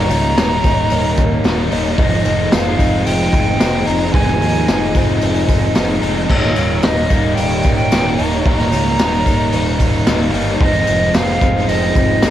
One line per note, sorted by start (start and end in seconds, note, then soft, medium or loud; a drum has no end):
0.00 0.37 D#2 medium
0.00 0.38 A#2 loud
0.00 0.10 D#3 medium
0.00 0.12 D#3 medium
0.00 0.12 G3 medium
0.00 0.37 G3 medium
0.00 0.11 A#3 medium
0.00 0.63 A#3 medium
0.00 0.11 D#4 loud
0.00 10.57 D#4 medium
0.00 1.95 C#5 medium
0.00 1.68 A#5 loud
0.00 10.57 A#5 medium
0.10 0.35 C#2 medium
0.10 0.37 D#3 medium
0.10 0.38 G3 medium
0.10 0.38 A#3 medium
0.10 0.39 D#4 medium
0.10 open hi-hat medium
0.10 tambourine medium
0.37 0.61 D#1 medium
0.37 0.66 D#3 medium
0.37 0.65 G3 medium
0.37 0.64 A#3 medium
0.37 0.64 D#4 medium
0.37 snare loud
0.37 open hi-hat medium
0.37 tambourine loud
0.51 tambourine soft
0.64 0.88 D#1 medium
0.64 1.43 D#3 medium
0.64 1.45 G3 medium
0.64 1.45 A#3 medium
0.64 1.46 D#4 medium
0.64 kick medium
0.64 open hi-hat medium
0.64 tambourine medium
0.91 1.40 D#1 loud
0.91 1.99 D#3 medium
0.91 open hi-hat medium
0.91 tambourine medium
1.04 tambourine soft
1.17 1.43 D#3 medium
1.17 1.44 G3 medium
1.17 1.71 A#3 medium
1.17 1.45 A#3 medium
1.17 1.46 D#4 medium
1.17 kick medium
1.17 open hi-hat medium
1.17 tambourine medium
1.31 tambourine soft
1.44 1.69 D#1 medium
1.44 1.73 D#3 medium
1.44 1.73 G3 medium
1.44 1.71 A#3 medium
1.44 1.71 D#4 medium
1.44 snare loud
1.44 open hi-hat medium
1.44 tambourine loud
1.71 1.96 D#1 medium
1.71 1.98 D#3 medium
1.71 1.99 G3 medium
1.71 1.97 A#3 medium
1.71 2.00 D#4 medium
1.71 open hi-hat medium
1.71 tambourine soft
1.84 tambourine soft
1.98 2.23 F1 medium
1.98 2.57 F2 medium
1.98 2.52 C3 medium
1.98 2.27 F3 medium
1.98 2.27 G#3 loud
1.98 2.26 C4 loud
1.98 2.25 D#4 loud
1.98 6.26 G#4 medium
1.98 2.54 D#5 medium
1.98 kick loud
1.98 open hi-hat medium
1.98 tambourine soft
2.12 tambourine soft
2.25 2.49 F1 medium
2.25 2.51 F3 medium
2.25 2.52 G#3 medium
2.25 2.53 C4 medium
2.25 2.54 D#4 medium
2.25 open hi-hat medium
2.25 tambourine medium
2.52 2.76 F1 medium
2.52 2.80 F3 medium
2.52 2.79 G#3 medium
2.52 2.79 C4 medium
2.52 2.78 D#4 medium
2.52 3.07 F5 medium
2.52 snare loud
2.52 open hi-hat medium
2.52 tambourine medium
2.67 tambourine soft
2.78 3.03 F1 medium
2.78 3.58 F3 medium
2.78 3.59 G#3 medium
2.78 3.59 C4 medium
2.78 3.61 D#4 medium
2.78 kick medium
2.78 open hi-hat medium
2.78 tambourine medium
3.05 3.30 F1 loud
3.05 4.40 F3 medium
3.05 3.88 G5 loud
3.05 open hi-hat medium
3.05 tambourine medium
3.20 tambourine soft
3.32 3.57 F1 medium
3.32 3.58 F3 medium
3.32 3.59 G#3 medium
3.32 3.60 C4 medium
3.32 3.87 C4 medium
3.32 3.61 D#4 medium
3.32 kick medium
3.32 open hi-hat medium
3.32 tambourine medium
3.47 tambourine soft
3.59 3.84 F1 medium
3.59 3.86 F3 medium
3.59 3.86 G#3 medium
3.59 3.85 C4 medium
3.59 3.85 D#4 medium
3.59 snare loud
3.59 open hi-hat medium
3.59 tambourine medium
3.85 4.11 F1 medium
3.85 4.13 F3 medium
3.85 4.13 G#3 medium
3.85 4.14 C4 medium
3.85 4.15 D#4 medium
3.85 4.14 A#5 loud
3.85 open hi-hat medium
3.85 tambourine soft
4.02 tambourine soft
4.13 4.38 F1 loud
4.13 4.67 F2 medium
4.13 4.68 C3 medium
4.13 4.41 F3 medium
4.13 4.40 G#3 medium
4.13 4.39 C4 loud
4.13 4.40 D#4 loud
4.13 5.21 G#5 loud
4.13 kick loud
4.13 open hi-hat medium
4.13 tambourine soft
4.28 snare soft
4.28 tambourine soft
4.40 4.65 D#2 medium
4.40 4.65 F3 medium
4.40 4.66 G#3 medium
4.40 4.67 C4 medium
4.40 4.68 D#4 medium
4.40 open hi-hat medium
4.40 tambourine medium
4.55 tambourine soft
4.66 4.92 F1 medium
4.66 4.95 F3 medium
4.66 4.95 G#3 medium
4.66 4.94 C4 medium
4.66 4.94 D#4 medium
4.66 snare loud
4.66 open hi-hat medium
4.66 tambourine medium
4.81 tambourine soft
4.94 5.19 F1 medium
4.94 5.73 F3 medium
4.94 5.74 G#3 medium
4.94 5.75 C4 medium
4.94 5.76 D#4 medium
4.94 kick medium
4.94 open hi-hat medium
4.94 tambourine medium
5.08 tambourine soft
5.21 5.70 F1 medium
5.21 6.30 F3 medium
5.21 open hi-hat medium
5.21 tambourine medium
5.35 tambourine soft
5.48 5.74 F3 medium
5.48 5.75 G#3 medium
5.48 6.02 C4 medium
5.48 5.76 C4 medium
5.48 5.78 D#4 medium
5.48 kick medium
5.48 open hi-hat medium
5.48 tambourine medium
5.62 tambourine soft
5.75 6.00 F1 medium
5.75 6.03 F3 medium
5.75 6.02 G#3 medium
5.75 6.02 C4 medium
5.75 6.02 D#4 medium
5.75 snare loud
5.75 open hi-hat medium
5.75 tambourine medium
6.02 6.26 F1 medium
6.02 6.29 F3 medium
6.02 6.28 G#3 medium
6.02 6.28 C4 medium
6.02 6.30 D#4 medium
6.02 open hi-hat medium
6.02 tambourine soft
6.16 tambourine soft
6.28 6.54 D#1 medium
6.28 8.46 D#2 medium
6.28 6.83 A#2 medium
6.28 6.58 D#3 medium
6.28 6.57 G3 loud
6.28 6.57 A#3 loud
6.28 6.56 D#4 loud
6.28 6.84 C#5 medium
6.28 10.57 C#5 medium
6.28 kick loud
6.28 tambourine soft
6.28 crash loud
6.42 snare soft
6.42 tambourine soft
6.56 6.81 D#1 medium
6.56 6.82 D#3 medium
6.56 6.83 G3 medium
6.56 6.83 A#3 medium
6.56 6.84 D#4 medium
6.56 open hi-hat medium
6.56 tambourine medium
6.82 7.08 D#1 medium
6.82 7.11 D#3 medium
6.82 7.11 G3 medium
6.82 7.10 A#3 medium
6.82 7.09 D#4 medium
6.82 7.36 D#5 medium
6.82 snare loud
6.82 open hi-hat medium
6.82 tambourine medium
6.97 tambourine soft
7.09 7.35 D#1 medium
7.09 7.90 D#3 medium
7.09 7.92 G3 medium
7.09 7.91 A#3 medium
7.09 7.93 D#4 medium
7.09 kick medium
7.09 open hi-hat medium
7.09 tambourine medium
7.35 7.62 D#1 medium
7.35 8.72 D#3 medium
7.35 7.74 G5 medium
7.35 open hi-hat medium
7.35 tambourine medium
7.51 tambourine soft
7.63 7.89 D#1 medium
7.63 7.89 D#3 medium
7.63 7.91 G3 medium
7.63 8.18 A#3 medium
7.63 7.91 A#3 medium
7.63 7.93 D#4 medium
7.63 kick medium
7.63 tambourine medium
7.75 8.17 G5 loud
7.75 tambourine soft
7.91 8.16 D#1 medium
7.91 8.20 D#3 medium
7.91 8.20 G3 medium
7.91 8.18 A#3 medium
7.91 8.18 D#4 medium
7.91 snare loud
7.91 open hi-hat medium
7.91 tambourine loud
8.16 8.43 D#1 medium
8.16 8.46 A#3 medium
8.16 8.47 D#4 medium
8.16 8.42 A#5 loud
8.16 open hi-hat medium
8.16 tambourine soft
8.21 8.45 D#3 medium
8.21 8.47 G3 medium
8.32 tambourine soft
8.42 8.70 D#1 medium
8.42 8.99 D#2 loud
8.42 9.00 A#2 loud
8.42 10.28 A#5 loud
8.42 kick loud
8.42 open hi-hat medium
8.42 tambourine soft
8.47 8.74 D#3 medium
8.47 8.74 G3 loud
8.47 8.73 A#3 loud
8.47 8.73 D#4 loud
8.58 snare soft
8.58 tambourine soft
8.72 8.96 C#2 medium
8.72 8.98 D#3 medium
8.72 9.00 G3 medium
8.72 9.00 A#3 medium
8.72 9.01 D#4 medium
8.72 open hi-hat medium
8.72 tambourine medium
8.99 9.23 D#1 medium
8.99 9.27 D#3 medium
8.99 9.27 G3 medium
8.99 9.26 A#3 medium
8.99 9.26 D#4 medium
8.99 snare loud
8.99 open hi-hat medium
8.99 tambourine loud
9.14 tambourine soft
9.26 9.50 D#1 medium
9.26 10.06 D#3 medium
9.26 10.08 G3 medium
9.26 10.07 A#3 medium
9.26 10.09 D#4 medium
9.26 kick medium
9.26 open hi-hat medium
9.26 tambourine medium
9.52 10.01 D#1 loud
9.52 10.61 D#3 medium
9.52 open hi-hat medium
9.52 tambourine medium
9.67 tambourine soft
9.79 10.05 D#3 medium
9.79 10.07 G3 medium
9.79 10.07 A#3 medium
9.79 10.33 A#3 medium
9.79 10.09 D#4 medium
9.79 kick medium
9.79 open hi-hat medium
9.79 tambourine medium
9.93 tambourine soft
10.07 10.31 D#1 medium
10.07 10.34 D#3 medium
10.07 10.34 G3 medium
10.07 10.33 A#3 medium
10.07 10.33 D#4 medium
10.07 snare loud
10.07 open hi-hat medium
10.07 tambourine loud
10.33 10.58 G1 medium
10.33 10.60 D#3 medium
10.33 10.61 G3 medium
10.33 10.59 A#3 medium
10.33 10.62 D#4 medium
10.33 open hi-hat medium
10.33 tambourine soft
10.48 tambourine soft
10.60 10.85 F1 loud
10.60 11.19 F2 medium
10.60 11.14 C3 loud
10.60 10.89 F3 medium
10.60 10.88 G#3 loud
10.60 10.88 C4 loud
10.60 12.30 D#4 medium
10.60 10.87 D#4 loud
10.60 12.30 G#4 medium
10.60 11.17 D#5 loud
10.60 12.30 G5 medium
10.60 kick loud
10.60 open hi-hat medium
10.60 tambourine soft
10.74 tambourine soft
10.87 11.12 F1 medium
10.87 11.14 F3 medium
10.87 11.15 G#3 medium
10.87 11.15 C4 medium
10.87 11.16 D#4 medium
10.87 open hi-hat medium
10.87 tambourine medium
11.14 11.39 F1 medium
11.14 11.42 F3 medium
11.14 11.42 G#3 medium
11.14 11.41 C4 medium
11.14 11.41 D#4 medium
11.14 11.70 F5 loud
11.14 snare loud
11.14 open hi-hat medium
11.14 tambourine loud
11.28 tambourine soft
11.41 11.66 F1 medium
11.41 12.21 F3 medium
11.41 12.21 G#3 medium
11.41 12.22 C4 medium
11.41 12.24 D#4 medium
11.41 kick medium
11.41 open hi-hat medium
11.41 tambourine medium
11.68 11.92 F1 medium
11.68 12.30 F3 medium
11.68 12.30 D#5 loud
11.68 open hi-hat medium
11.68 tambourine medium
11.83 tambourine soft
11.95 12.20 F1 medium
11.95 12.20 F3 medium
11.95 12.21 G#3 medium
11.95 12.30 C4 medium
11.95 12.22 C4 medium
11.95 12.24 D#4 medium
11.95 kick medium
11.95 open hi-hat medium
11.95 tambourine medium
12.22 12.30 F1 medium
12.22 12.30 F3 medium
12.22 12.30 G#3 medium
12.22 12.30 C4 medium
12.22 12.30 D#4 medium
12.22 snare loud
12.22 open hi-hat medium
12.22 tambourine loud